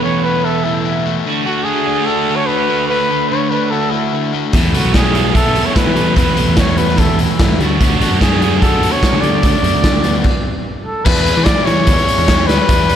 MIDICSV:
0, 0, Header, 1, 6, 480
1, 0, Start_track
1, 0, Tempo, 408163
1, 1491, Time_signature, 4, 2, 24, 8
1, 15239, End_track
2, 0, Start_track
2, 0, Title_t, "Trumpet"
2, 0, Program_c, 0, 56
2, 38, Note_on_c, 0, 73, 83
2, 280, Note_on_c, 0, 71, 85
2, 298, Note_off_c, 0, 73, 0
2, 526, Note_on_c, 0, 69, 82
2, 544, Note_off_c, 0, 71, 0
2, 758, Note_on_c, 0, 64, 70
2, 775, Note_off_c, 0, 69, 0
2, 1245, Note_off_c, 0, 64, 0
2, 1720, Note_on_c, 0, 66, 83
2, 1930, Note_on_c, 0, 68, 86
2, 1948, Note_off_c, 0, 66, 0
2, 2420, Note_on_c, 0, 69, 92
2, 2437, Note_off_c, 0, 68, 0
2, 2775, Note_on_c, 0, 73, 95
2, 2792, Note_off_c, 0, 69, 0
2, 2897, Note_on_c, 0, 71, 96
2, 2915, Note_off_c, 0, 73, 0
2, 3383, Note_off_c, 0, 71, 0
2, 3390, Note_on_c, 0, 71, 105
2, 3868, Note_on_c, 0, 73, 88
2, 3885, Note_off_c, 0, 71, 0
2, 4113, Note_on_c, 0, 71, 83
2, 4131, Note_off_c, 0, 73, 0
2, 4357, Note_on_c, 0, 69, 89
2, 4374, Note_off_c, 0, 71, 0
2, 4598, Note_on_c, 0, 64, 72
2, 4615, Note_off_c, 0, 69, 0
2, 5086, Note_off_c, 0, 64, 0
2, 5571, Note_on_c, 0, 66, 76
2, 5796, Note_off_c, 0, 66, 0
2, 5819, Note_on_c, 0, 68, 85
2, 6264, Note_off_c, 0, 68, 0
2, 6292, Note_on_c, 0, 69, 98
2, 6652, Note_on_c, 0, 73, 86
2, 6670, Note_off_c, 0, 69, 0
2, 6770, Note_on_c, 0, 71, 93
2, 6788, Note_off_c, 0, 73, 0
2, 7244, Note_off_c, 0, 71, 0
2, 7251, Note_on_c, 0, 71, 91
2, 7700, Note_off_c, 0, 71, 0
2, 7741, Note_on_c, 0, 73, 84
2, 7970, Note_on_c, 0, 71, 89
2, 7987, Note_off_c, 0, 73, 0
2, 8220, Note_on_c, 0, 69, 85
2, 8238, Note_off_c, 0, 71, 0
2, 8459, Note_off_c, 0, 69, 0
2, 8476, Note_on_c, 0, 64, 71
2, 8914, Note_off_c, 0, 64, 0
2, 9418, Note_on_c, 0, 66, 80
2, 9641, Note_off_c, 0, 66, 0
2, 9659, Note_on_c, 0, 68, 86
2, 10105, Note_off_c, 0, 68, 0
2, 10117, Note_on_c, 0, 69, 92
2, 10486, Note_on_c, 0, 73, 105
2, 10503, Note_off_c, 0, 69, 0
2, 10829, Note_on_c, 0, 74, 93
2, 10847, Note_off_c, 0, 73, 0
2, 12522, Note_off_c, 0, 74, 0
2, 12760, Note_on_c, 0, 69, 87
2, 12992, Note_on_c, 0, 71, 117
2, 13010, Note_off_c, 0, 69, 0
2, 13457, Note_on_c, 0, 74, 101
2, 13475, Note_off_c, 0, 71, 0
2, 13700, Note_on_c, 0, 73, 119
2, 13717, Note_off_c, 0, 74, 0
2, 14665, Note_on_c, 0, 71, 102
2, 14683, Note_off_c, 0, 73, 0
2, 15239, Note_off_c, 0, 71, 0
2, 15239, End_track
3, 0, Start_track
3, 0, Title_t, "Overdriven electric guitar"
3, 0, Program_c, 1, 29
3, 0, Note_on_c, 1, 57, 65
3, 66, Note_on_c, 1, 52, 62
3, 300, Note_on_c, 1, 59, 57
3, 528, Note_on_c, 1, 64, 76
3, 753, Note_off_c, 1, 57, 0
3, 758, Note_on_c, 1, 57, 59
3, 988, Note_off_c, 1, 52, 0
3, 1002, Note_on_c, 1, 52, 64
3, 1238, Note_off_c, 1, 57, 0
3, 1243, Note_on_c, 1, 57, 63
3, 1481, Note_off_c, 1, 52, 0
3, 1486, Note_on_c, 1, 50, 65
3, 1490, Note_off_c, 1, 64, 0
3, 1496, Note_off_c, 1, 59, 0
3, 1717, Note_off_c, 1, 57, 0
3, 1721, Note_on_c, 1, 57, 69
3, 1938, Note_off_c, 1, 50, 0
3, 1952, Note_on_c, 1, 50, 68
3, 2197, Note_on_c, 1, 62, 58
3, 2446, Note_on_c, 1, 66, 69
3, 2686, Note_off_c, 1, 57, 0
3, 2691, Note_on_c, 1, 57, 62
3, 2915, Note_off_c, 1, 50, 0
3, 2929, Note_on_c, 1, 50, 63
3, 3165, Note_off_c, 1, 57, 0
3, 3170, Note_on_c, 1, 57, 62
3, 3405, Note_off_c, 1, 50, 0
3, 3405, Note_off_c, 1, 62, 0
3, 3419, Note_on_c, 1, 50, 63
3, 3647, Note_off_c, 1, 57, 0
3, 3650, Note_off_c, 1, 66, 0
3, 3652, Note_on_c, 1, 57, 62
3, 3883, Note_off_c, 1, 50, 0
3, 3898, Note_on_c, 1, 50, 64
3, 4131, Note_on_c, 1, 62, 56
3, 4378, Note_on_c, 1, 66, 67
3, 4612, Note_off_c, 1, 57, 0
3, 4616, Note_on_c, 1, 57, 66
3, 4843, Note_off_c, 1, 50, 0
3, 4857, Note_on_c, 1, 50, 59
3, 5095, Note_off_c, 1, 57, 0
3, 5100, Note_on_c, 1, 57, 59
3, 5333, Note_off_c, 1, 62, 0
3, 5334, Note_off_c, 1, 50, 0
3, 5337, Note_off_c, 1, 66, 0
3, 5339, Note_on_c, 1, 52, 69
3, 5565, Note_off_c, 1, 57, 0
3, 5570, Note_on_c, 1, 57, 64
3, 5794, Note_off_c, 1, 52, 0
3, 5808, Note_on_c, 1, 52, 68
3, 6048, Note_on_c, 1, 59, 63
3, 6288, Note_on_c, 1, 64, 70
3, 6516, Note_off_c, 1, 57, 0
3, 6521, Note_on_c, 1, 57, 57
3, 6751, Note_off_c, 1, 52, 0
3, 6765, Note_on_c, 1, 52, 63
3, 6997, Note_off_c, 1, 57, 0
3, 7001, Note_on_c, 1, 57, 68
3, 7231, Note_off_c, 1, 52, 0
3, 7245, Note_on_c, 1, 52, 69
3, 7488, Note_off_c, 1, 57, 0
3, 7492, Note_on_c, 1, 57, 70
3, 7493, Note_off_c, 1, 64, 0
3, 7528, Note_off_c, 1, 59, 0
3, 7722, Note_off_c, 1, 52, 0
3, 7736, Note_on_c, 1, 52, 70
3, 7978, Note_on_c, 1, 59, 54
3, 8221, Note_on_c, 1, 64, 75
3, 8457, Note_off_c, 1, 57, 0
3, 8462, Note_on_c, 1, 57, 61
3, 8688, Note_off_c, 1, 52, 0
3, 8702, Note_on_c, 1, 52, 63
3, 8939, Note_off_c, 1, 64, 0
3, 8940, Note_off_c, 1, 52, 0
3, 8947, Note_on_c, 1, 50, 66
3, 9177, Note_off_c, 1, 50, 0
3, 9181, Note_on_c, 1, 50, 68
3, 9418, Note_off_c, 1, 57, 0
3, 9423, Note_on_c, 1, 57, 72
3, 9458, Note_off_c, 1, 59, 0
3, 9651, Note_off_c, 1, 50, 0
3, 9665, Note_on_c, 1, 50, 73
3, 9897, Note_on_c, 1, 59, 62
3, 10140, Note_on_c, 1, 66, 68
3, 10364, Note_off_c, 1, 57, 0
3, 10378, Note_on_c, 1, 57, 59
3, 10611, Note_off_c, 1, 50, 0
3, 10625, Note_on_c, 1, 50, 63
3, 10850, Note_off_c, 1, 57, 0
3, 10864, Note_on_c, 1, 57, 63
3, 11090, Note_off_c, 1, 50, 0
3, 11097, Note_off_c, 1, 59, 0
3, 11104, Note_on_c, 1, 50, 69
3, 11322, Note_off_c, 1, 57, 0
3, 11336, Note_on_c, 1, 57, 63
3, 11338, Note_off_c, 1, 66, 0
3, 11558, Note_off_c, 1, 50, 0
3, 11573, Note_on_c, 1, 50, 71
3, 11814, Note_on_c, 1, 59, 62
3, 12054, Note_off_c, 1, 50, 0
3, 12055, Note_off_c, 1, 59, 0
3, 12056, Note_off_c, 1, 57, 0
3, 12993, Note_on_c, 1, 52, 106
3, 13002, Note_on_c, 1, 56, 96
3, 13010, Note_on_c, 1, 59, 95
3, 13016, Note_on_c, 1, 64, 101
3, 13026, Note_on_c, 1, 68, 89
3, 13028, Note_on_c, 1, 74, 105
3, 13470, Note_off_c, 1, 52, 0
3, 13475, Note_on_c, 1, 52, 92
3, 13477, Note_off_c, 1, 56, 0
3, 13481, Note_on_c, 1, 56, 89
3, 13486, Note_off_c, 1, 59, 0
3, 13487, Note_off_c, 1, 64, 0
3, 13491, Note_on_c, 1, 59, 99
3, 13492, Note_on_c, 1, 64, 99
3, 13495, Note_off_c, 1, 68, 0
3, 13499, Note_off_c, 1, 74, 0
3, 13500, Note_on_c, 1, 68, 91
3, 13504, Note_on_c, 1, 74, 86
3, 13708, Note_off_c, 1, 52, 0
3, 13712, Note_on_c, 1, 52, 69
3, 13716, Note_off_c, 1, 56, 0
3, 13720, Note_off_c, 1, 59, 0
3, 13721, Note_on_c, 1, 56, 81
3, 13724, Note_off_c, 1, 64, 0
3, 13725, Note_on_c, 1, 59, 76
3, 13729, Note_on_c, 1, 64, 78
3, 13734, Note_off_c, 1, 68, 0
3, 13737, Note_off_c, 1, 74, 0
3, 13739, Note_on_c, 1, 68, 87
3, 13742, Note_on_c, 1, 74, 83
3, 13946, Note_off_c, 1, 52, 0
3, 13951, Note_on_c, 1, 52, 93
3, 13955, Note_off_c, 1, 56, 0
3, 13958, Note_off_c, 1, 59, 0
3, 13959, Note_on_c, 1, 56, 87
3, 13970, Note_off_c, 1, 74, 0
3, 13971, Note_off_c, 1, 64, 0
3, 13972, Note_on_c, 1, 59, 93
3, 13973, Note_off_c, 1, 68, 0
3, 13976, Note_on_c, 1, 64, 97
3, 13978, Note_on_c, 1, 68, 107
3, 13984, Note_on_c, 1, 74, 100
3, 14425, Note_off_c, 1, 52, 0
3, 14430, Note_off_c, 1, 59, 0
3, 14430, Note_on_c, 1, 52, 84
3, 14432, Note_off_c, 1, 56, 0
3, 14436, Note_on_c, 1, 56, 81
3, 14443, Note_off_c, 1, 74, 0
3, 14444, Note_off_c, 1, 64, 0
3, 14444, Note_on_c, 1, 59, 86
3, 14449, Note_on_c, 1, 64, 90
3, 14453, Note_off_c, 1, 68, 0
3, 14457, Note_on_c, 1, 68, 92
3, 14457, Note_on_c, 1, 74, 77
3, 14662, Note_off_c, 1, 52, 0
3, 14667, Note_on_c, 1, 52, 81
3, 14676, Note_off_c, 1, 59, 0
3, 14677, Note_off_c, 1, 56, 0
3, 14682, Note_on_c, 1, 56, 92
3, 14686, Note_off_c, 1, 64, 0
3, 14687, Note_off_c, 1, 74, 0
3, 14690, Note_on_c, 1, 59, 93
3, 14690, Note_on_c, 1, 64, 93
3, 14693, Note_off_c, 1, 68, 0
3, 14698, Note_on_c, 1, 68, 94
3, 14701, Note_on_c, 1, 74, 104
3, 14900, Note_off_c, 1, 52, 0
3, 14905, Note_on_c, 1, 52, 97
3, 14906, Note_off_c, 1, 59, 0
3, 14910, Note_off_c, 1, 56, 0
3, 14915, Note_on_c, 1, 56, 84
3, 14919, Note_off_c, 1, 64, 0
3, 14920, Note_on_c, 1, 59, 97
3, 14924, Note_off_c, 1, 74, 0
3, 14924, Note_on_c, 1, 64, 108
3, 14929, Note_off_c, 1, 68, 0
3, 14933, Note_on_c, 1, 68, 116
3, 14938, Note_on_c, 1, 74, 111
3, 15239, Note_off_c, 1, 52, 0
3, 15239, Note_off_c, 1, 56, 0
3, 15239, Note_off_c, 1, 59, 0
3, 15239, Note_off_c, 1, 64, 0
3, 15239, Note_off_c, 1, 68, 0
3, 15239, Note_off_c, 1, 74, 0
3, 15239, End_track
4, 0, Start_track
4, 0, Title_t, "Overdriven electric guitar"
4, 0, Program_c, 2, 29
4, 0, Note_on_c, 2, 40, 61
4, 0, Note_on_c, 2, 47, 71
4, 0, Note_on_c, 2, 52, 71
4, 0, Note_on_c, 2, 57, 66
4, 0, Note_on_c, 2, 59, 70
4, 0, Note_on_c, 2, 64, 69
4, 1482, Note_off_c, 2, 52, 0
4, 1487, Note_on_c, 2, 50, 65
4, 1490, Note_off_c, 2, 40, 0
4, 1494, Note_off_c, 2, 47, 0
4, 1498, Note_off_c, 2, 57, 0
4, 1502, Note_off_c, 2, 59, 0
4, 1502, Note_on_c, 2, 57, 70
4, 1507, Note_off_c, 2, 64, 0
4, 1508, Note_on_c, 2, 62, 72
4, 1522, Note_on_c, 2, 66, 81
4, 5330, Note_on_c, 2, 40, 66
4, 5332, Note_off_c, 2, 50, 0
4, 5337, Note_on_c, 2, 47, 65
4, 5343, Note_off_c, 2, 62, 0
4, 5348, Note_on_c, 2, 52, 65
4, 5349, Note_off_c, 2, 57, 0
4, 5350, Note_off_c, 2, 66, 0
4, 5354, Note_on_c, 2, 57, 71
4, 5361, Note_on_c, 2, 59, 71
4, 5366, Note_on_c, 2, 64, 72
4, 8929, Note_off_c, 2, 52, 0
4, 8934, Note_on_c, 2, 50, 67
4, 8935, Note_off_c, 2, 40, 0
4, 8938, Note_off_c, 2, 47, 0
4, 8943, Note_off_c, 2, 57, 0
4, 8947, Note_off_c, 2, 59, 0
4, 8947, Note_on_c, 2, 59, 75
4, 8953, Note_off_c, 2, 64, 0
4, 8959, Note_on_c, 2, 62, 63
4, 8973, Note_on_c, 2, 66, 79
4, 12055, Note_off_c, 2, 50, 0
4, 12061, Note_off_c, 2, 59, 0
4, 12067, Note_off_c, 2, 62, 0
4, 12074, Note_off_c, 2, 66, 0
4, 15239, End_track
5, 0, Start_track
5, 0, Title_t, "Picked electric bass"
5, 0, Program_c, 3, 34
5, 5334, Note_on_c, 3, 40, 86
5, 5552, Note_off_c, 3, 40, 0
5, 5577, Note_on_c, 3, 37, 90
5, 5685, Note_off_c, 3, 37, 0
5, 5692, Note_on_c, 3, 35, 82
5, 6607, Note_off_c, 3, 35, 0
5, 6900, Note_on_c, 3, 52, 79
5, 7007, Note_off_c, 3, 52, 0
5, 7021, Note_on_c, 3, 52, 79
5, 7237, Note_off_c, 3, 52, 0
5, 7252, Note_on_c, 3, 40, 87
5, 7363, Note_off_c, 3, 40, 0
5, 7510, Note_on_c, 3, 35, 83
5, 7613, Note_off_c, 3, 35, 0
5, 7618, Note_on_c, 3, 40, 85
5, 8531, Note_off_c, 3, 40, 0
5, 8698, Note_on_c, 3, 44, 99
5, 8806, Note_off_c, 3, 44, 0
5, 8812, Note_on_c, 3, 40, 75
5, 8924, Note_off_c, 3, 40, 0
5, 8931, Note_on_c, 3, 38, 88
5, 9370, Note_off_c, 3, 38, 0
5, 9403, Note_on_c, 3, 33, 92
5, 9518, Note_off_c, 3, 33, 0
5, 9526, Note_on_c, 3, 42, 84
5, 10445, Note_off_c, 3, 42, 0
5, 10733, Note_on_c, 3, 50, 80
5, 10844, Note_off_c, 3, 50, 0
5, 10849, Note_on_c, 3, 50, 82
5, 11071, Note_off_c, 3, 50, 0
5, 11096, Note_on_c, 3, 38, 97
5, 11205, Note_off_c, 3, 38, 0
5, 11327, Note_on_c, 3, 42, 78
5, 11440, Note_off_c, 3, 42, 0
5, 11456, Note_on_c, 3, 38, 87
5, 12009, Note_off_c, 3, 38, 0
5, 13010, Note_on_c, 3, 40, 103
5, 13339, Note_off_c, 3, 40, 0
5, 13372, Note_on_c, 3, 52, 99
5, 13591, Note_off_c, 3, 52, 0
5, 13726, Note_on_c, 3, 52, 76
5, 13963, Note_on_c, 3, 40, 101
5, 13981, Note_off_c, 3, 52, 0
5, 14185, Note_off_c, 3, 40, 0
5, 14324, Note_on_c, 3, 40, 97
5, 14684, Note_off_c, 3, 40, 0
5, 14684, Note_on_c, 3, 38, 81
5, 14796, Note_off_c, 3, 38, 0
5, 14919, Note_on_c, 3, 40, 106
5, 15239, Note_off_c, 3, 40, 0
5, 15239, End_track
6, 0, Start_track
6, 0, Title_t, "Drums"
6, 5328, Note_on_c, 9, 42, 78
6, 5333, Note_on_c, 9, 36, 92
6, 5445, Note_off_c, 9, 42, 0
6, 5450, Note_off_c, 9, 36, 0
6, 5578, Note_on_c, 9, 42, 55
6, 5695, Note_off_c, 9, 42, 0
6, 5811, Note_on_c, 9, 42, 74
6, 5813, Note_on_c, 9, 38, 93
6, 5814, Note_on_c, 9, 36, 99
6, 5928, Note_off_c, 9, 42, 0
6, 5931, Note_off_c, 9, 36, 0
6, 5931, Note_off_c, 9, 38, 0
6, 6053, Note_on_c, 9, 42, 58
6, 6170, Note_off_c, 9, 42, 0
6, 6292, Note_on_c, 9, 36, 91
6, 6293, Note_on_c, 9, 42, 76
6, 6409, Note_off_c, 9, 36, 0
6, 6410, Note_off_c, 9, 42, 0
6, 6532, Note_on_c, 9, 42, 60
6, 6650, Note_off_c, 9, 42, 0
6, 6773, Note_on_c, 9, 36, 110
6, 6776, Note_on_c, 9, 42, 88
6, 6778, Note_on_c, 9, 38, 106
6, 6891, Note_off_c, 9, 36, 0
6, 6894, Note_off_c, 9, 42, 0
6, 6896, Note_off_c, 9, 38, 0
6, 7011, Note_on_c, 9, 42, 60
6, 7129, Note_off_c, 9, 42, 0
6, 7247, Note_on_c, 9, 42, 86
6, 7251, Note_on_c, 9, 36, 99
6, 7364, Note_off_c, 9, 42, 0
6, 7368, Note_off_c, 9, 36, 0
6, 7486, Note_on_c, 9, 42, 70
6, 7604, Note_off_c, 9, 42, 0
6, 7721, Note_on_c, 9, 42, 89
6, 7723, Note_on_c, 9, 38, 96
6, 7731, Note_on_c, 9, 36, 95
6, 7839, Note_off_c, 9, 42, 0
6, 7841, Note_off_c, 9, 38, 0
6, 7849, Note_off_c, 9, 36, 0
6, 7967, Note_on_c, 9, 42, 68
6, 8085, Note_off_c, 9, 42, 0
6, 8095, Note_on_c, 9, 38, 30
6, 8203, Note_on_c, 9, 42, 83
6, 8212, Note_on_c, 9, 36, 92
6, 8213, Note_off_c, 9, 38, 0
6, 8320, Note_off_c, 9, 42, 0
6, 8329, Note_off_c, 9, 36, 0
6, 8452, Note_on_c, 9, 42, 66
6, 8569, Note_off_c, 9, 42, 0
6, 8694, Note_on_c, 9, 42, 86
6, 8696, Note_on_c, 9, 36, 115
6, 8697, Note_on_c, 9, 38, 115
6, 8812, Note_off_c, 9, 42, 0
6, 8814, Note_off_c, 9, 36, 0
6, 8814, Note_off_c, 9, 38, 0
6, 8941, Note_on_c, 9, 42, 55
6, 9059, Note_off_c, 9, 42, 0
6, 9180, Note_on_c, 9, 36, 110
6, 9184, Note_on_c, 9, 42, 89
6, 9298, Note_off_c, 9, 36, 0
6, 9301, Note_off_c, 9, 42, 0
6, 9423, Note_on_c, 9, 42, 64
6, 9540, Note_off_c, 9, 42, 0
6, 9659, Note_on_c, 9, 36, 96
6, 9663, Note_on_c, 9, 42, 81
6, 9665, Note_on_c, 9, 38, 100
6, 9776, Note_off_c, 9, 36, 0
6, 9780, Note_off_c, 9, 42, 0
6, 9783, Note_off_c, 9, 38, 0
6, 9901, Note_on_c, 9, 42, 66
6, 10019, Note_off_c, 9, 42, 0
6, 10139, Note_on_c, 9, 36, 99
6, 10142, Note_on_c, 9, 42, 72
6, 10256, Note_off_c, 9, 36, 0
6, 10259, Note_off_c, 9, 42, 0
6, 10383, Note_on_c, 9, 42, 59
6, 10500, Note_off_c, 9, 42, 0
6, 10616, Note_on_c, 9, 36, 108
6, 10621, Note_on_c, 9, 42, 92
6, 10623, Note_on_c, 9, 38, 120
6, 10734, Note_off_c, 9, 36, 0
6, 10738, Note_off_c, 9, 42, 0
6, 10741, Note_off_c, 9, 38, 0
6, 10856, Note_on_c, 9, 42, 62
6, 10974, Note_off_c, 9, 42, 0
6, 11087, Note_on_c, 9, 42, 88
6, 11095, Note_on_c, 9, 36, 98
6, 11205, Note_off_c, 9, 42, 0
6, 11212, Note_off_c, 9, 36, 0
6, 11337, Note_on_c, 9, 42, 64
6, 11454, Note_off_c, 9, 42, 0
6, 11569, Note_on_c, 9, 42, 88
6, 11571, Note_on_c, 9, 36, 97
6, 11572, Note_on_c, 9, 38, 103
6, 11687, Note_off_c, 9, 42, 0
6, 11688, Note_off_c, 9, 36, 0
6, 11689, Note_off_c, 9, 38, 0
6, 11805, Note_on_c, 9, 42, 69
6, 11922, Note_off_c, 9, 42, 0
6, 12043, Note_on_c, 9, 49, 85
6, 12049, Note_on_c, 9, 36, 97
6, 12161, Note_off_c, 9, 49, 0
6, 12166, Note_off_c, 9, 36, 0
6, 13002, Note_on_c, 9, 49, 126
6, 13006, Note_on_c, 9, 36, 115
6, 13120, Note_off_c, 9, 49, 0
6, 13124, Note_off_c, 9, 36, 0
6, 13125, Note_on_c, 9, 42, 46
6, 13243, Note_off_c, 9, 42, 0
6, 13244, Note_on_c, 9, 42, 71
6, 13362, Note_off_c, 9, 42, 0
6, 13475, Note_on_c, 9, 42, 94
6, 13477, Note_on_c, 9, 38, 111
6, 13482, Note_on_c, 9, 36, 107
6, 13592, Note_off_c, 9, 42, 0
6, 13595, Note_off_c, 9, 38, 0
6, 13600, Note_off_c, 9, 36, 0
6, 13726, Note_on_c, 9, 42, 75
6, 13843, Note_off_c, 9, 42, 0
6, 13955, Note_on_c, 9, 42, 96
6, 13964, Note_on_c, 9, 36, 114
6, 14072, Note_off_c, 9, 42, 0
6, 14081, Note_off_c, 9, 36, 0
6, 14092, Note_on_c, 9, 42, 46
6, 14209, Note_off_c, 9, 42, 0
6, 14211, Note_on_c, 9, 42, 69
6, 14329, Note_off_c, 9, 42, 0
6, 14330, Note_on_c, 9, 42, 47
6, 14441, Note_off_c, 9, 42, 0
6, 14441, Note_on_c, 9, 42, 102
6, 14443, Note_on_c, 9, 38, 126
6, 14444, Note_on_c, 9, 36, 119
6, 14558, Note_off_c, 9, 42, 0
6, 14561, Note_off_c, 9, 38, 0
6, 14562, Note_off_c, 9, 36, 0
6, 14687, Note_on_c, 9, 42, 76
6, 14689, Note_on_c, 9, 38, 79
6, 14805, Note_off_c, 9, 42, 0
6, 14807, Note_off_c, 9, 38, 0
6, 14920, Note_on_c, 9, 42, 107
6, 14925, Note_on_c, 9, 36, 114
6, 15037, Note_off_c, 9, 42, 0
6, 15042, Note_off_c, 9, 36, 0
6, 15163, Note_on_c, 9, 42, 83
6, 15239, Note_off_c, 9, 42, 0
6, 15239, End_track
0, 0, End_of_file